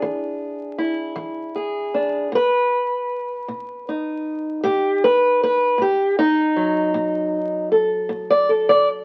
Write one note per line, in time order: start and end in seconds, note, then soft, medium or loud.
0.00 0.71 E3 medium
0.00 1.93 D4 soft
0.00 0.77 E4 soft
0.00 1.54 G#4 soft
0.78 2.28 E4 soft
1.16 1.86 E3 medium
1.56 2.33 G#4 soft
1.94 2.28 D4 soft
2.32 3.02 B2 medium
2.32 4.65 B4 loud
3.48 4.17 B2 medium
3.89 6.19 D#4 soft
4.64 5.33 B2 medium
4.64 5.02 G4 medium
5.04 5.41 B4 loud
5.43 5.80 B4 loud
5.78 6.48 B2 medium
5.78 6.18 G4 medium
6.19 7.71 D#4 loud
6.56 9.04 F#3 soft
6.94 7.64 B2 medium
7.72 8.49 A4 soft
8.09 8.79 B2 medium
8.30 8.49 D5 loud
8.49 9.04 A4 soft
8.69 8.88 D5 loud